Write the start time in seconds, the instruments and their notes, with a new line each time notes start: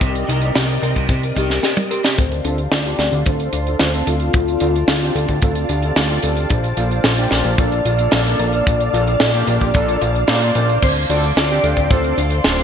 Already playing: string machine C4 G4 A#4 D5 D#5
0.01 analog synth bass C2, overdriven electric guitar C3, synth arpeggio sound C4, kick, closed hi-hat
0.15 closed hi-hat
0.28 analog synth bass C2, overdriven electric guitar D#3, synth arpeggio sound D#4, closed hi-hat
0.42 overdriven electric guitar C3, closed hi-hat
0.55 analog synth bass C2, overdriven electric guitar C3, synth arpeggio sound G4, snare, closed hi-hat
0.69 closed hi-hat
0.83 analog synth bass C2, overdriven electric guitar C4, synth arpeggio sound A#4, closed hi-hat
0.96 analog synth bass C2, overdriven electric guitar C3, kick, closed hi-hat
1.09 analog synth bass C2, overdriven electric guitar C3, synth arpeggio sound C4, kick, closed hi-hat
1.23 closed hi-hat
1.37 analog synth bass C2, overdriven electric guitar D#3, synth arpeggio sound D#4, soft synth lead G4, kick, closed hi-hat
1.50 overdriven electric guitar C3, snare, closed hi-hat
1.63 overdriven electric guitar C3, synth arpeggio sound G4, snare, closed hi-hat
1.77 closed hi-hat, high tom
1.91 overdriven electric guitar C4, soft synth lead G4, synth arpeggio sound A#4, closed hi-hat
2.04 overdriven electric guitar C3, snare, closed hi-hat
2.18 analog synth bass D2, synth arpeggio sound C4, soft synth lead C5, string machine D5 F5 A5 C6, kick, closed hi-hat
2.32 closed hi-hat
2.45 analog synth bass D2, analog polysynth C4 D4 F4 A4, synth arpeggio sound D4, closed hi-hat
2.58 closed hi-hat
2.72 analog synth bass D2, synth arpeggio sound F4, soft synth lead D5, snare, closed hi-hat
2.85 analog polysynth C4 D4 F4 G4, closed hi-hat
2.99 analog synth bass D2, synth arpeggio sound A4, soft synth lead D5, snare, closed hi-hat
3.12 analog synth bass D2, closed hi-hat
3.26 analog synth bass D2, synth arpeggio sound C4, analog polysynth C4 D4 F4 A4, soft synth lead C5, kick, closed hi-hat
3.40 closed hi-hat
3.53 analog synth bass D2, synth arpeggio sound D4, closed hi-hat
3.67 analog polysynth C4 D4 F4 A4, closed hi-hat
3.79 analog synth bass D2, synth arpeggio sound F4, soft synth lead C5, snare, closed hi-hat
3.94 analog polysynth C4 D4 F4 A4, closed hi-hat
4.07 analog synth bass D2, soft synth lead F4, synth arpeggio sound A4, closed hi-hat
4.20 closed hi-hat
4.33 analog synth bass D2, synth arpeggio sound C4, kick, closed hi-hat
4.48 closed hi-hat
4.60 analog synth bass D2, analog polysynth C4 D4 F4 A4, synth arpeggio sound D4, closed hi-hat
4.76 closed hi-hat
4.88 analog synth bass D2, synth arpeggio sound F4, snare, closed hi-hat
5.01 analog polysynth C4 D4 F4 G4, closed hi-hat
5.15 analog synth bass D2, synth arpeggio sound A4, closed hi-hat
5.28 analog synth bass D2, kick, closed hi-hat
5.42 analog synth bass D2, analog polysynth C4 D4 F4 A4, synth arpeggio sound C4, kick, closed hi-hat
5.55 closed hi-hat
5.69 analog synth bass D2, synth arpeggio sound D4, soft synth lead G4, closed hi-hat
5.82 analog polysynth C4 D4 F4 A4, closed hi-hat
5.96 analog synth bass D2, synth arpeggio sound F4, snare, closed hi-hat
6.10 analog polysynth C4 D4 F4 A4, closed hi-hat
6.23 analog synth bass D2, soft synth lead G4, synth arpeggio sound A4, closed hi-hat
6.37 closed hi-hat
6.50 analog synth bass A#1, synth arpeggio sound D4, soft synth lead C5, kick, closed hi-hat
6.64 closed hi-hat
6.77 analog synth bass A#1, analog polysynth A#3 D4 F4 A4, synth arpeggio sound F4, closed hi-hat
6.91 closed hi-hat
7.04 analog synth bass A#1, synth arpeggio sound A4, snare, closed hi-hat
7.17 analog polysynth A#3 D4 F4 G4, closed hi-hat
7.31 analog synth bass A#1, synth arpeggio sound A#4, snare, closed hi-hat
7.45 analog synth bass A#1, closed hi-hat
7.58 analog synth bass A#1, analog polysynth A#3 D4 F4 A4, synth arpeggio sound D4, soft synth lead D5, kick, closed hi-hat
7.72 closed hi-hat
7.85 analog synth bass A#1, synth arpeggio sound F4, closed hi-hat
7.99 analog polysynth A#3 D4 F4 A4, closed hi-hat
8.11 analog synth bass A#1, synth arpeggio sound A4, snare, closed hi-hat
8.26 analog polysynth A#3 D4 F4 A4, closed hi-hat
8.39 analog synth bass A#1, synth arpeggio sound A#4, closed hi-hat
8.53 closed hi-hat
8.66 analog synth bass A#1, synth arpeggio sound D4, kick, closed hi-hat
8.80 closed hi-hat
8.93 analog synth bass A#1, analog polysynth A#3 D4 F4 A4, synth arpeggio sound F4, closed hi-hat
9.07 closed hi-hat
9.20 analog synth bass A#1, synth arpeggio sound A4, snare, closed hi-hat
9.34 analog polysynth A#3 D4 F4 G4, closed hi-hat
9.47 analog synth bass A#1, synth arpeggio sound A#4, closed hi-hat
9.61 analog synth bass A#1, kick, closed hi-hat
9.74 analog synth bass A#1, analog polysynth A#3 D4 F4 A4, synth arpeggio sound D4, kick, closed hi-hat
9.88 closed hi-hat
10.01 analog synth bass A#1, synth arpeggio sound F4, closed hi-hat
10.15 closed hi-hat
10.27 analog synth bass A#2, analog polysynth A#3 D4 F4 C5, synth arpeggio sound A4, soft synth lead D5, snare, closed hi-hat
10.42 closed hi-hat
10.55 analog synth bass A#1, synth arpeggio sound A#4, closed hi-hat
10.69 closed hi-hat
10.82 analog synth bass D2, synth arpeggio sound C4, string machine A4 D5 F5 C6, digital synth lead C5, soft synth lead C5, kick, closed hi-hat, crash
10.96 closed hi-hat
11.10 analog synth bass D2, analog polysynth C4 D4 F4 A4, synth arpeggio sound D4, digital synth lead D5, soft synth lead D5, closed hi-hat
11.24 closed hi-hat
11.37 analog synth bass D2, synth arpeggio sound F4, snare, closed hi-hat
11.50 analog polysynth C4 D4 F4 G4, closed hi-hat
11.64 analog synth bass D2, synth arpeggio sound A4, closed hi-hat
11.77 analog synth bass D2, kick, closed hi-hat
11.91 analog synth bass D2, analog polysynth C4 D4 F4 A4, synth arpeggio sound C4, soft synth lead C5, digital synth lead C5, kick, closed hi-hat
12.04 closed hi-hat
12.18 analog synth bass D2, synth arpeggio sound D4, closed hi-hat
12.30 closed hi-hat
12.44 analog synth bass D1, analog polysynth C4 D4 F4 D5, synth arpeggio sound F4, snare, closed hi-hat
12.59 closed hi-hat